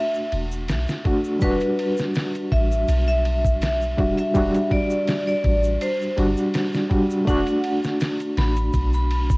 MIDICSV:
0, 0, Header, 1, 5, 480
1, 0, Start_track
1, 0, Key_signature, 1, "minor"
1, 0, Tempo, 731707
1, 932, Time_signature, 4, 2, 24, 8
1, 6150, End_track
2, 0, Start_track
2, 0, Title_t, "Vibraphone"
2, 0, Program_c, 0, 11
2, 0, Note_on_c, 0, 76, 84
2, 189, Note_off_c, 0, 76, 0
2, 933, Note_on_c, 0, 71, 88
2, 1262, Note_off_c, 0, 71, 0
2, 1652, Note_on_c, 0, 76, 85
2, 1981, Note_off_c, 0, 76, 0
2, 2019, Note_on_c, 0, 76, 95
2, 2338, Note_off_c, 0, 76, 0
2, 2371, Note_on_c, 0, 76, 82
2, 2701, Note_off_c, 0, 76, 0
2, 2737, Note_on_c, 0, 76, 89
2, 3057, Note_off_c, 0, 76, 0
2, 3094, Note_on_c, 0, 74, 87
2, 3422, Note_off_c, 0, 74, 0
2, 3460, Note_on_c, 0, 74, 91
2, 3778, Note_off_c, 0, 74, 0
2, 3815, Note_on_c, 0, 72, 82
2, 4031, Note_off_c, 0, 72, 0
2, 4773, Note_on_c, 0, 78, 89
2, 5102, Note_off_c, 0, 78, 0
2, 5497, Note_on_c, 0, 83, 90
2, 5824, Note_off_c, 0, 83, 0
2, 5867, Note_on_c, 0, 83, 96
2, 6150, Note_off_c, 0, 83, 0
2, 6150, End_track
3, 0, Start_track
3, 0, Title_t, "Reed electric piano"
3, 0, Program_c, 1, 4
3, 0, Control_c, 1, 64, 127
3, 0, Note_on_c, 1, 57, 86
3, 0, Note_on_c, 1, 62, 72
3, 0, Note_on_c, 1, 66, 91
3, 687, Note_off_c, 1, 57, 0
3, 687, Note_on_c, 1, 57, 83
3, 695, Note_off_c, 1, 62, 0
3, 695, Note_on_c, 1, 62, 71
3, 702, Note_off_c, 1, 66, 0
3, 702, Note_on_c, 1, 66, 91
3, 870, Note_off_c, 1, 57, 0
3, 873, Note_off_c, 1, 62, 0
3, 877, Note_off_c, 1, 66, 0
3, 915, Note_on_c, 1, 55, 84
3, 933, Note_on_c, 1, 62, 77
3, 941, Control_c, 1, 64, 0
3, 949, Note_on_c, 1, 66, 93
3, 1064, Control_c, 1, 64, 127
3, 2577, Note_off_c, 1, 55, 0
3, 2585, Note_off_c, 1, 62, 0
3, 2593, Note_off_c, 1, 66, 0
3, 2606, Note_on_c, 1, 55, 80
3, 2613, Note_on_c, 1, 62, 77
3, 2623, Note_on_c, 1, 66, 92
3, 2822, Note_off_c, 1, 55, 0
3, 2825, Note_off_c, 1, 62, 0
3, 2830, Note_off_c, 1, 66, 0
3, 2849, Note_on_c, 1, 55, 90
3, 2856, Note_on_c, 1, 62, 80
3, 2866, Note_on_c, 1, 66, 91
3, 2967, Note_off_c, 1, 55, 0
3, 2971, Note_off_c, 1, 62, 0
3, 2976, Note_off_c, 1, 66, 0
3, 4046, Note_on_c, 1, 55, 87
3, 4053, Note_on_c, 1, 62, 79
3, 4062, Note_on_c, 1, 66, 93
3, 4502, Note_off_c, 1, 55, 0
3, 4505, Note_off_c, 1, 62, 0
3, 4510, Note_off_c, 1, 66, 0
3, 4524, Note_on_c, 1, 55, 77
3, 4531, Note_on_c, 1, 62, 66
3, 4540, Note_on_c, 1, 66, 82
3, 4741, Note_off_c, 1, 55, 0
3, 4745, Note_off_c, 1, 62, 0
3, 4749, Note_off_c, 1, 66, 0
3, 4756, Note_on_c, 1, 57, 93
3, 4772, Note_on_c, 1, 62, 83
3, 4778, Control_c, 1, 64, 0
3, 4788, Note_on_c, 1, 66, 105
3, 4894, Control_c, 1, 64, 127
3, 6150, Note_off_c, 1, 57, 0
3, 6150, Note_off_c, 1, 62, 0
3, 6150, Note_off_c, 1, 66, 0
3, 6150, End_track
4, 0, Start_track
4, 0, Title_t, "808-style bass"
4, 0, Program_c, 2, 38
4, 212, Note_on_c, 2, 28, 78
4, 451, Note_on_c, 2, 35, 82
4, 461, Note_off_c, 2, 28, 0
4, 564, Note_off_c, 2, 35, 0
4, 931, Note_on_c, 2, 28, 94
4, 1044, Note_off_c, 2, 28, 0
4, 1651, Note_on_c, 2, 33, 82
4, 1864, Note_off_c, 2, 33, 0
4, 1891, Note_on_c, 2, 35, 91
4, 2589, Note_off_c, 2, 35, 0
4, 2612, Note_on_c, 2, 28, 78
4, 2724, Note_off_c, 2, 28, 0
4, 2852, Note_on_c, 2, 28, 91
4, 2964, Note_off_c, 2, 28, 0
4, 3570, Note_on_c, 2, 33, 86
4, 3784, Note_off_c, 2, 33, 0
4, 4052, Note_on_c, 2, 31, 100
4, 4164, Note_off_c, 2, 31, 0
4, 4771, Note_on_c, 2, 28, 95
4, 4884, Note_off_c, 2, 28, 0
4, 5493, Note_on_c, 2, 33, 90
4, 5705, Note_off_c, 2, 33, 0
4, 5732, Note_on_c, 2, 35, 93
4, 6150, Note_off_c, 2, 35, 0
4, 6150, End_track
5, 0, Start_track
5, 0, Title_t, "Drums"
5, 94, Note_on_c, 9, 82, 39
5, 160, Note_off_c, 9, 82, 0
5, 211, Note_on_c, 9, 51, 67
5, 276, Note_off_c, 9, 51, 0
5, 338, Note_on_c, 9, 82, 75
5, 404, Note_off_c, 9, 82, 0
5, 449, Note_on_c, 9, 51, 82
5, 453, Note_on_c, 9, 82, 69
5, 456, Note_on_c, 9, 38, 109
5, 515, Note_off_c, 9, 51, 0
5, 519, Note_off_c, 9, 82, 0
5, 522, Note_off_c, 9, 38, 0
5, 580, Note_on_c, 9, 82, 41
5, 585, Note_on_c, 9, 38, 58
5, 646, Note_off_c, 9, 82, 0
5, 651, Note_off_c, 9, 38, 0
5, 690, Note_on_c, 9, 51, 63
5, 691, Note_on_c, 9, 36, 84
5, 756, Note_off_c, 9, 36, 0
5, 756, Note_off_c, 9, 51, 0
5, 816, Note_on_c, 9, 82, 73
5, 882, Note_off_c, 9, 82, 0
5, 926, Note_on_c, 9, 82, 67
5, 930, Note_on_c, 9, 36, 103
5, 931, Note_on_c, 9, 51, 82
5, 991, Note_off_c, 9, 82, 0
5, 996, Note_off_c, 9, 36, 0
5, 997, Note_off_c, 9, 51, 0
5, 1053, Note_on_c, 9, 82, 36
5, 1059, Note_on_c, 9, 51, 45
5, 1118, Note_off_c, 9, 82, 0
5, 1124, Note_off_c, 9, 51, 0
5, 1174, Note_on_c, 9, 51, 67
5, 1240, Note_off_c, 9, 51, 0
5, 1294, Note_on_c, 9, 82, 74
5, 1309, Note_on_c, 9, 38, 48
5, 1359, Note_off_c, 9, 82, 0
5, 1375, Note_off_c, 9, 38, 0
5, 1405, Note_on_c, 9, 82, 56
5, 1414, Note_on_c, 9, 51, 86
5, 1421, Note_on_c, 9, 38, 116
5, 1471, Note_off_c, 9, 82, 0
5, 1479, Note_off_c, 9, 51, 0
5, 1486, Note_off_c, 9, 38, 0
5, 1539, Note_on_c, 9, 82, 33
5, 1542, Note_on_c, 9, 51, 42
5, 1604, Note_off_c, 9, 82, 0
5, 1607, Note_off_c, 9, 51, 0
5, 1652, Note_on_c, 9, 36, 88
5, 1654, Note_on_c, 9, 51, 63
5, 1717, Note_off_c, 9, 36, 0
5, 1719, Note_off_c, 9, 51, 0
5, 1782, Note_on_c, 9, 82, 62
5, 1848, Note_off_c, 9, 82, 0
5, 1890, Note_on_c, 9, 82, 64
5, 1892, Note_on_c, 9, 51, 82
5, 1956, Note_off_c, 9, 82, 0
5, 1958, Note_off_c, 9, 51, 0
5, 2020, Note_on_c, 9, 82, 43
5, 2085, Note_off_c, 9, 82, 0
5, 2133, Note_on_c, 9, 51, 67
5, 2199, Note_off_c, 9, 51, 0
5, 2260, Note_on_c, 9, 36, 87
5, 2263, Note_on_c, 9, 82, 76
5, 2325, Note_off_c, 9, 36, 0
5, 2329, Note_off_c, 9, 82, 0
5, 2372, Note_on_c, 9, 82, 65
5, 2373, Note_on_c, 9, 51, 84
5, 2380, Note_on_c, 9, 38, 107
5, 2438, Note_off_c, 9, 82, 0
5, 2439, Note_off_c, 9, 51, 0
5, 2446, Note_off_c, 9, 38, 0
5, 2501, Note_on_c, 9, 82, 39
5, 2567, Note_off_c, 9, 82, 0
5, 2612, Note_on_c, 9, 36, 90
5, 2612, Note_on_c, 9, 51, 62
5, 2677, Note_off_c, 9, 36, 0
5, 2678, Note_off_c, 9, 51, 0
5, 2741, Note_on_c, 9, 82, 63
5, 2742, Note_on_c, 9, 51, 44
5, 2807, Note_off_c, 9, 82, 0
5, 2808, Note_off_c, 9, 51, 0
5, 2851, Note_on_c, 9, 82, 54
5, 2852, Note_on_c, 9, 36, 105
5, 2852, Note_on_c, 9, 51, 84
5, 2917, Note_off_c, 9, 36, 0
5, 2917, Note_off_c, 9, 82, 0
5, 2918, Note_off_c, 9, 51, 0
5, 2981, Note_on_c, 9, 51, 43
5, 2983, Note_on_c, 9, 82, 42
5, 3047, Note_off_c, 9, 51, 0
5, 3049, Note_off_c, 9, 82, 0
5, 3092, Note_on_c, 9, 36, 89
5, 3092, Note_on_c, 9, 51, 63
5, 3157, Note_off_c, 9, 36, 0
5, 3158, Note_off_c, 9, 51, 0
5, 3217, Note_on_c, 9, 82, 73
5, 3283, Note_off_c, 9, 82, 0
5, 3331, Note_on_c, 9, 51, 87
5, 3332, Note_on_c, 9, 82, 59
5, 3338, Note_on_c, 9, 38, 113
5, 3396, Note_off_c, 9, 51, 0
5, 3398, Note_off_c, 9, 82, 0
5, 3403, Note_off_c, 9, 38, 0
5, 3461, Note_on_c, 9, 82, 36
5, 3527, Note_off_c, 9, 82, 0
5, 3570, Note_on_c, 9, 51, 65
5, 3571, Note_on_c, 9, 36, 88
5, 3636, Note_off_c, 9, 36, 0
5, 3636, Note_off_c, 9, 51, 0
5, 3697, Note_on_c, 9, 82, 74
5, 3762, Note_off_c, 9, 82, 0
5, 3812, Note_on_c, 9, 51, 89
5, 3814, Note_on_c, 9, 82, 60
5, 3878, Note_off_c, 9, 51, 0
5, 3880, Note_off_c, 9, 82, 0
5, 3944, Note_on_c, 9, 82, 35
5, 4009, Note_off_c, 9, 82, 0
5, 4051, Note_on_c, 9, 51, 72
5, 4117, Note_off_c, 9, 51, 0
5, 4179, Note_on_c, 9, 82, 61
5, 4244, Note_off_c, 9, 82, 0
5, 4290, Note_on_c, 9, 51, 88
5, 4294, Note_on_c, 9, 82, 60
5, 4297, Note_on_c, 9, 38, 112
5, 4356, Note_off_c, 9, 51, 0
5, 4359, Note_off_c, 9, 82, 0
5, 4363, Note_off_c, 9, 38, 0
5, 4419, Note_on_c, 9, 82, 31
5, 4426, Note_on_c, 9, 38, 57
5, 4485, Note_off_c, 9, 82, 0
5, 4491, Note_off_c, 9, 38, 0
5, 4532, Note_on_c, 9, 36, 84
5, 4532, Note_on_c, 9, 51, 63
5, 4597, Note_off_c, 9, 36, 0
5, 4597, Note_off_c, 9, 51, 0
5, 4661, Note_on_c, 9, 82, 75
5, 4727, Note_off_c, 9, 82, 0
5, 4771, Note_on_c, 9, 36, 99
5, 4771, Note_on_c, 9, 51, 81
5, 4774, Note_on_c, 9, 82, 59
5, 4837, Note_off_c, 9, 36, 0
5, 4837, Note_off_c, 9, 51, 0
5, 4839, Note_off_c, 9, 82, 0
5, 4898, Note_on_c, 9, 51, 47
5, 4904, Note_on_c, 9, 82, 35
5, 4964, Note_off_c, 9, 51, 0
5, 4969, Note_off_c, 9, 82, 0
5, 5010, Note_on_c, 9, 51, 67
5, 5076, Note_off_c, 9, 51, 0
5, 5139, Note_on_c, 9, 82, 66
5, 5147, Note_on_c, 9, 38, 48
5, 5205, Note_off_c, 9, 82, 0
5, 5213, Note_off_c, 9, 38, 0
5, 5250, Note_on_c, 9, 82, 59
5, 5253, Note_on_c, 9, 51, 85
5, 5260, Note_on_c, 9, 38, 117
5, 5316, Note_off_c, 9, 82, 0
5, 5319, Note_off_c, 9, 51, 0
5, 5326, Note_off_c, 9, 38, 0
5, 5378, Note_on_c, 9, 82, 33
5, 5380, Note_on_c, 9, 51, 43
5, 5444, Note_off_c, 9, 82, 0
5, 5446, Note_off_c, 9, 51, 0
5, 5493, Note_on_c, 9, 51, 79
5, 5500, Note_on_c, 9, 38, 98
5, 5558, Note_off_c, 9, 51, 0
5, 5566, Note_off_c, 9, 38, 0
5, 5616, Note_on_c, 9, 82, 62
5, 5621, Note_on_c, 9, 51, 35
5, 5682, Note_off_c, 9, 82, 0
5, 5686, Note_off_c, 9, 51, 0
5, 5729, Note_on_c, 9, 82, 53
5, 5732, Note_on_c, 9, 36, 89
5, 5732, Note_on_c, 9, 51, 65
5, 5794, Note_off_c, 9, 82, 0
5, 5798, Note_off_c, 9, 36, 0
5, 5798, Note_off_c, 9, 51, 0
5, 5858, Note_on_c, 9, 82, 36
5, 5924, Note_off_c, 9, 82, 0
5, 5974, Note_on_c, 9, 51, 72
5, 6040, Note_off_c, 9, 51, 0
5, 6100, Note_on_c, 9, 82, 74
5, 6101, Note_on_c, 9, 36, 87
5, 6150, Note_off_c, 9, 36, 0
5, 6150, Note_off_c, 9, 82, 0
5, 6150, End_track
0, 0, End_of_file